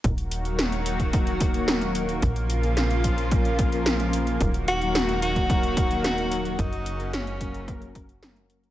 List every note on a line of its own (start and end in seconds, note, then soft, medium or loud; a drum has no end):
0.04 2.20 D#1 medium
0.04 2.20 D#3 medium
0.04 0.13 F#3 medium
0.04 2.20 F#3 medium
0.04 0.13 A#3 medium
0.04 8.71 A#3 medium
0.04 0.13 D#4 medium
0.04 2.20 F#4 medium
0.04 0.13 A#4 medium
0.04 kick loud
0.04 closed hi-hat medium
0.18 closed hi-hat soft
0.31 closed hi-hat medium
0.45 0.59 F#3 medium
0.45 0.59 A#3 medium
0.45 0.59 D#4 medium
0.45 0.59 A#4 medium
0.45 closed hi-hat soft
0.59 snare loud
0.59 closed hi-hat medium
0.72 closed hi-hat soft
0.86 1.10 F#3 medium
0.86 1.10 A#3 medium
0.86 1.10 D#4 medium
0.86 1.10 A#4 medium
0.86 closed hi-hat medium
1.00 kick medium
1.00 closed hi-hat soft
1.13 1.51 F#3 medium
1.13 1.51 A#3 medium
1.13 1.51 D#4 medium
1.13 1.51 A#4 loud
1.13 kick loud
1.13 closed hi-hat medium
1.27 closed hi-hat soft
1.41 kick loud
1.41 closed hi-hat medium
1.54 1.78 F#3 medium
1.54 1.78 A#3 medium
1.54 1.78 D#4 medium
1.54 1.78 A#4 loud
1.54 closed hi-hat soft
1.68 snare loud
1.68 closed hi-hat medium
1.81 2.19 F#3 loud
1.81 2.19 A#3 medium
1.81 2.19 D#4 medium
1.81 2.19 A#4 loud
1.81 closed hi-hat soft
1.95 closed hi-hat medium
2.09 closed hi-hat soft
2.22 4.38 A#1 medium
2.22 4.39 C#3 medium
2.22 2.31 F3 medium
2.22 4.39 F3 medium
2.22 2.31 A#3 medium
2.22 2.31 C#4 medium
2.22 4.39 F4 medium
2.22 2.31 A#4 medium
2.22 kick loud
2.22 closed hi-hat medium
2.36 closed hi-hat soft
2.50 closed hi-hat medium
2.63 2.77 F3 medium
2.63 2.77 A#3 medium
2.63 2.77 C#4 medium
2.63 2.77 A#4 medium
2.63 closed hi-hat soft
2.77 snare loud
2.77 closed hi-hat medium
2.91 closed hi-hat soft
3.04 3.28 F3 medium
3.04 3.28 A#3 medium
3.04 3.28 C#4 medium
3.04 3.28 A#4 medium
3.04 kick medium
3.04 closed hi-hat medium
3.18 closed hi-hat soft
3.31 3.69 F3 medium
3.31 3.69 A#3 medium
3.31 3.69 C#4 medium
3.31 3.69 A#4 loud
3.31 kick loud
3.31 closed hi-hat medium
3.45 closed hi-hat soft
3.59 kick loud
3.59 closed hi-hat medium
3.72 3.96 F3 medium
3.72 3.96 A#3 medium
3.72 3.96 C#4 medium
3.72 3.96 A#4 loud
3.72 closed hi-hat soft
3.86 snare loud
3.86 closed hi-hat medium
4.00 4.37 F3 medium
4.00 4.37 A#3 medium
4.00 4.37 C#4 medium
4.00 4.37 A#4 loud
4.00 closed hi-hat soft
4.13 closed hi-hat medium
4.27 closed hi-hat soft
4.41 6.56 D#1 medium
4.41 6.57 D#3 medium
4.41 8.71 F#3 medium
4.41 4.49 F#3 medium
4.41 4.49 A#3 medium
4.41 4.49 D#4 medium
4.41 8.71 F#4 medium
4.41 4.49 A#4 medium
4.41 kick loud
4.41 closed hi-hat medium
4.54 closed hi-hat soft
4.68 5.19 F#4 loud
4.68 closed hi-hat medium
4.81 4.95 F#3 medium
4.81 4.95 A#3 medium
4.81 4.95 D#4 medium
4.81 4.95 A#4 medium
4.81 closed hi-hat soft
4.95 snare loud
4.95 closed hi-hat medium
5.09 closed hi-hat soft
5.22 5.46 F#3 medium
5.22 5.46 A#3 medium
5.22 5.46 D#4 medium
5.22 6.00 F#4 loud
5.22 5.46 A#4 medium
5.22 closed hi-hat medium
5.36 kick medium
5.36 closed hi-hat soft
5.50 5.87 F#3 medium
5.50 5.87 A#3 medium
5.50 5.87 D#4 medium
5.50 5.87 A#4 loud
5.50 kick loud
5.50 closed hi-hat medium
5.63 closed hi-hat soft
5.77 kick loud
5.77 closed hi-hat medium
5.91 6.15 F#3 medium
5.91 6.15 A#3 medium
5.91 6.15 D#4 medium
5.91 6.15 A#4 loud
5.91 closed hi-hat soft
6.04 6.60 F#4 loud
6.04 snare loud
6.04 closed hi-hat medium
6.18 6.56 F#3 loud
6.18 6.56 A#3 medium
6.18 6.56 D#4 medium
6.18 6.56 A#4 loud
6.18 closed hi-hat soft
6.32 closed hi-hat medium
6.45 closed hi-hat soft
6.59 8.71 F#1 medium
6.59 8.71 C#3 medium
6.59 6.67 F#3 medium
6.59 6.67 A#3 medium
6.59 6.67 C#4 medium
6.59 7.13 D#4 loud
6.59 6.67 A#4 medium
6.59 kick loud
6.59 closed hi-hat medium
6.73 closed hi-hat soft
6.86 closed hi-hat medium
7.00 7.13 F#3 medium
7.00 7.13 A#3 medium
7.00 7.13 C#4 medium
7.00 7.13 A#4 medium
7.00 closed hi-hat soft
7.13 7.91 C#4 medium
7.13 snare loud
7.13 closed hi-hat medium
7.27 closed hi-hat soft
7.41 7.65 F#3 medium
7.41 7.65 A#3 medium
7.41 7.65 C#4 medium
7.41 7.65 A#4 medium
7.41 kick medium
7.41 closed hi-hat medium
7.54 closed hi-hat soft
7.68 8.06 F#3 medium
7.68 8.06 A#3 medium
7.68 8.05 C#4 medium
7.68 8.05 A#4 loud
7.68 kick loud
7.68 closed hi-hat medium
7.82 closed hi-hat soft
7.95 kick loud
7.95 closed hi-hat medium
8.09 closed hi-hat soft
8.22 8.46 F#3 medium
8.22 8.46 A#3 medium
8.22 8.46 C#4 medium
8.22 8.46 A#4 medium
8.22 snare loud
8.22 closed hi-hat medium
8.36 closed hi-hat soft
8.50 8.71 F#3 medium
8.50 8.71 A#3 medium
8.50 8.71 C#4 medium
8.50 8.71 A#4 medium
8.50 closed hi-hat medium
8.64 closed hi-hat soft